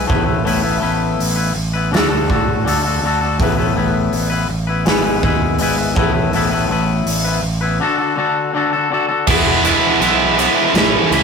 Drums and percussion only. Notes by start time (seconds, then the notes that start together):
0.10 kick
0.47 open hi-hat
1.20 open hi-hat
1.94 snare, open hi-hat
2.30 kick
2.67 open hi-hat
3.40 kick, open hi-hat
4.13 open hi-hat
4.86 snare, open hi-hat
5.23 kick
5.59 open hi-hat
5.96 kick
6.33 open hi-hat
7.07 open hi-hat
9.27 kick, crash
9.65 ride
10.02 ride
10.39 ride
10.75 snare, ride
11.12 ride